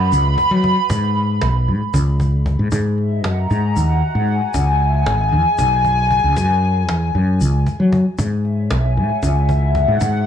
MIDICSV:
0, 0, Header, 1, 5, 480
1, 0, Start_track
1, 0, Key_signature, 5, "minor"
1, 0, Tempo, 520382
1, 832, Time_signature, 7, 3, 24, 8
1, 9468, End_track
2, 0, Start_track
2, 0, Title_t, "Analog synth pad"
2, 0, Program_c, 0, 89
2, 0, Note_on_c, 0, 83, 98
2, 667, Note_off_c, 0, 83, 0
2, 4553, Note_on_c, 0, 80, 94
2, 5716, Note_off_c, 0, 80, 0
2, 9468, End_track
3, 0, Start_track
3, 0, Title_t, "Fretless electric bass"
3, 0, Program_c, 1, 35
3, 0, Note_on_c, 1, 42, 80
3, 99, Note_off_c, 1, 42, 0
3, 113, Note_on_c, 1, 37, 102
3, 339, Note_off_c, 1, 37, 0
3, 471, Note_on_c, 1, 54, 86
3, 697, Note_off_c, 1, 54, 0
3, 829, Note_on_c, 1, 44, 98
3, 1282, Note_off_c, 1, 44, 0
3, 1310, Note_on_c, 1, 35, 95
3, 1553, Note_on_c, 1, 44, 84
3, 1567, Note_off_c, 1, 35, 0
3, 1666, Note_off_c, 1, 44, 0
3, 1787, Note_on_c, 1, 37, 91
3, 2354, Note_off_c, 1, 37, 0
3, 2390, Note_on_c, 1, 44, 85
3, 2504, Note_off_c, 1, 44, 0
3, 2509, Note_on_c, 1, 44, 91
3, 2995, Note_off_c, 1, 44, 0
3, 2995, Note_on_c, 1, 42, 90
3, 3219, Note_off_c, 1, 42, 0
3, 3235, Note_on_c, 1, 44, 88
3, 3459, Note_off_c, 1, 44, 0
3, 3472, Note_on_c, 1, 39, 96
3, 3698, Note_off_c, 1, 39, 0
3, 3828, Note_on_c, 1, 44, 89
3, 4056, Note_off_c, 1, 44, 0
3, 4191, Note_on_c, 1, 37, 97
3, 4643, Note_off_c, 1, 37, 0
3, 4670, Note_on_c, 1, 32, 90
3, 4910, Note_on_c, 1, 40, 81
3, 4924, Note_off_c, 1, 32, 0
3, 5024, Note_off_c, 1, 40, 0
3, 5152, Note_on_c, 1, 35, 90
3, 5717, Note_off_c, 1, 35, 0
3, 5755, Note_on_c, 1, 37, 80
3, 5867, Note_off_c, 1, 37, 0
3, 5875, Note_on_c, 1, 42, 87
3, 6349, Note_off_c, 1, 42, 0
3, 6349, Note_on_c, 1, 40, 89
3, 6576, Note_off_c, 1, 40, 0
3, 6595, Note_on_c, 1, 42, 86
3, 6819, Note_off_c, 1, 42, 0
3, 6836, Note_on_c, 1, 37, 100
3, 7060, Note_off_c, 1, 37, 0
3, 7193, Note_on_c, 1, 54, 91
3, 7418, Note_off_c, 1, 54, 0
3, 7552, Note_on_c, 1, 44, 102
3, 8004, Note_off_c, 1, 44, 0
3, 8035, Note_on_c, 1, 35, 90
3, 8277, Note_on_c, 1, 44, 87
3, 8291, Note_off_c, 1, 35, 0
3, 8388, Note_off_c, 1, 44, 0
3, 8512, Note_on_c, 1, 37, 93
3, 9077, Note_off_c, 1, 37, 0
3, 9115, Note_on_c, 1, 44, 84
3, 9227, Note_off_c, 1, 44, 0
3, 9235, Note_on_c, 1, 44, 96
3, 9468, Note_off_c, 1, 44, 0
3, 9468, End_track
4, 0, Start_track
4, 0, Title_t, "Cajon"
4, 108, Note_on_c, 9, 38, 47
4, 201, Note_off_c, 9, 38, 0
4, 349, Note_on_c, 9, 36, 72
4, 441, Note_off_c, 9, 36, 0
4, 588, Note_on_c, 9, 36, 70
4, 680, Note_off_c, 9, 36, 0
4, 828, Note_on_c, 9, 36, 109
4, 920, Note_off_c, 9, 36, 0
4, 1065, Note_on_c, 9, 38, 32
4, 1157, Note_off_c, 9, 38, 0
4, 1305, Note_on_c, 9, 38, 102
4, 1397, Note_off_c, 9, 38, 0
4, 1546, Note_on_c, 9, 38, 30
4, 1638, Note_off_c, 9, 38, 0
4, 1787, Note_on_c, 9, 38, 33
4, 1788, Note_on_c, 9, 36, 100
4, 1879, Note_off_c, 9, 38, 0
4, 1880, Note_off_c, 9, 36, 0
4, 2025, Note_on_c, 9, 38, 32
4, 2027, Note_on_c, 9, 36, 72
4, 2117, Note_off_c, 9, 38, 0
4, 2119, Note_off_c, 9, 36, 0
4, 2268, Note_on_c, 9, 36, 76
4, 2360, Note_off_c, 9, 36, 0
4, 2509, Note_on_c, 9, 36, 108
4, 2601, Note_off_c, 9, 36, 0
4, 2749, Note_on_c, 9, 38, 35
4, 2841, Note_off_c, 9, 38, 0
4, 2990, Note_on_c, 9, 38, 104
4, 3082, Note_off_c, 9, 38, 0
4, 3232, Note_on_c, 9, 38, 37
4, 3324, Note_off_c, 9, 38, 0
4, 3472, Note_on_c, 9, 38, 48
4, 3564, Note_off_c, 9, 38, 0
4, 3710, Note_on_c, 9, 38, 35
4, 3802, Note_off_c, 9, 38, 0
4, 3949, Note_on_c, 9, 38, 35
4, 4042, Note_off_c, 9, 38, 0
4, 4190, Note_on_c, 9, 36, 109
4, 4282, Note_off_c, 9, 36, 0
4, 4429, Note_on_c, 9, 38, 34
4, 4521, Note_off_c, 9, 38, 0
4, 4671, Note_on_c, 9, 38, 105
4, 4763, Note_off_c, 9, 38, 0
4, 4913, Note_on_c, 9, 38, 33
4, 5005, Note_off_c, 9, 38, 0
4, 5153, Note_on_c, 9, 36, 108
4, 5245, Note_off_c, 9, 36, 0
4, 5391, Note_on_c, 9, 38, 32
4, 5392, Note_on_c, 9, 36, 71
4, 5484, Note_off_c, 9, 36, 0
4, 5484, Note_off_c, 9, 38, 0
4, 5632, Note_on_c, 9, 36, 77
4, 5724, Note_off_c, 9, 36, 0
4, 5872, Note_on_c, 9, 36, 108
4, 5965, Note_off_c, 9, 36, 0
4, 6114, Note_on_c, 9, 38, 34
4, 6206, Note_off_c, 9, 38, 0
4, 6352, Note_on_c, 9, 38, 110
4, 6444, Note_off_c, 9, 38, 0
4, 6591, Note_on_c, 9, 38, 34
4, 6683, Note_off_c, 9, 38, 0
4, 6829, Note_on_c, 9, 38, 44
4, 6921, Note_off_c, 9, 38, 0
4, 7070, Note_on_c, 9, 38, 32
4, 7071, Note_on_c, 9, 36, 72
4, 7162, Note_off_c, 9, 38, 0
4, 7163, Note_off_c, 9, 36, 0
4, 7311, Note_on_c, 9, 36, 80
4, 7403, Note_off_c, 9, 36, 0
4, 7550, Note_on_c, 9, 36, 108
4, 7643, Note_off_c, 9, 36, 0
4, 7793, Note_on_c, 9, 38, 37
4, 7885, Note_off_c, 9, 38, 0
4, 8030, Note_on_c, 9, 38, 115
4, 8122, Note_off_c, 9, 38, 0
4, 8273, Note_on_c, 9, 38, 37
4, 8365, Note_off_c, 9, 38, 0
4, 8511, Note_on_c, 9, 36, 107
4, 8604, Note_off_c, 9, 36, 0
4, 8752, Note_on_c, 9, 36, 74
4, 8754, Note_on_c, 9, 38, 31
4, 8844, Note_off_c, 9, 36, 0
4, 8846, Note_off_c, 9, 38, 0
4, 8992, Note_on_c, 9, 36, 75
4, 9085, Note_off_c, 9, 36, 0
4, 9233, Note_on_c, 9, 36, 110
4, 9325, Note_off_c, 9, 36, 0
4, 9468, End_track
5, 0, Start_track
5, 0, Title_t, "Drums"
5, 115, Note_on_c, 9, 82, 54
5, 208, Note_off_c, 9, 82, 0
5, 356, Note_on_c, 9, 82, 17
5, 448, Note_off_c, 9, 82, 0
5, 831, Note_on_c, 9, 82, 57
5, 923, Note_off_c, 9, 82, 0
5, 1792, Note_on_c, 9, 82, 59
5, 1884, Note_off_c, 9, 82, 0
5, 2031, Note_on_c, 9, 82, 20
5, 2123, Note_off_c, 9, 82, 0
5, 2507, Note_on_c, 9, 82, 59
5, 2600, Note_off_c, 9, 82, 0
5, 3235, Note_on_c, 9, 82, 19
5, 3327, Note_off_c, 9, 82, 0
5, 3472, Note_on_c, 9, 82, 61
5, 3565, Note_off_c, 9, 82, 0
5, 4190, Note_on_c, 9, 82, 57
5, 4282, Note_off_c, 9, 82, 0
5, 5150, Note_on_c, 9, 82, 58
5, 5243, Note_off_c, 9, 82, 0
5, 5393, Note_on_c, 9, 82, 18
5, 5486, Note_off_c, 9, 82, 0
5, 5875, Note_on_c, 9, 82, 58
5, 5967, Note_off_c, 9, 82, 0
5, 6834, Note_on_c, 9, 82, 61
5, 6927, Note_off_c, 9, 82, 0
5, 7072, Note_on_c, 9, 82, 19
5, 7164, Note_off_c, 9, 82, 0
5, 7554, Note_on_c, 9, 82, 66
5, 7646, Note_off_c, 9, 82, 0
5, 8515, Note_on_c, 9, 82, 61
5, 8607, Note_off_c, 9, 82, 0
5, 8755, Note_on_c, 9, 82, 19
5, 8848, Note_off_c, 9, 82, 0
5, 9231, Note_on_c, 9, 82, 58
5, 9323, Note_off_c, 9, 82, 0
5, 9468, End_track
0, 0, End_of_file